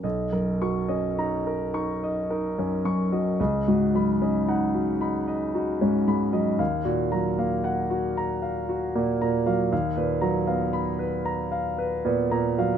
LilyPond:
<<
  \new Staff \with { instrumentName = "Grand piano" } { \time 3/4 \key b \lydian \tempo 4 = 57 dis''16 ais'16 cis'''16 dis''16 ais''16 ais'16 cis'''16 dis''16 ais'16 fis,16 cis'''16 dis''16 | dis''16 fis'16 b''16 dis''16 fis''16 fis'16 b''16 dis''16 fis'16 gis,16 b''16 dis''16 | eis''16 fis'16 ais''16 eis''16 fis''16 fis'16 ais''16 eis''16 fis'16 ais,16 ais''16 eis''16 | eis''16 b'16 ais''16 eis''16 b''16 b'16 ais''16 eis''16 b'16 ais,16 ais''16 eis''16 | }
  \new Staff \with { instrumentName = "Grand piano" } { \clef bass \time 3/4 \key b \lydian b,,16 fis,16 fis16 cis'16 dis'8 dis'8 dis'16 cis'16 fis,16 fis16 | cis,16 gis,16 fis16 cis'16 dis'8 dis'8 dis'16 cis'16 gis,16 fis16 | dis,16 ais,16 fis16 ais8 r4 ais16 ais,16 fis16 | dis,16 ais,16 fis16 b8 r4 b16 ais,16 fis16 | }
>>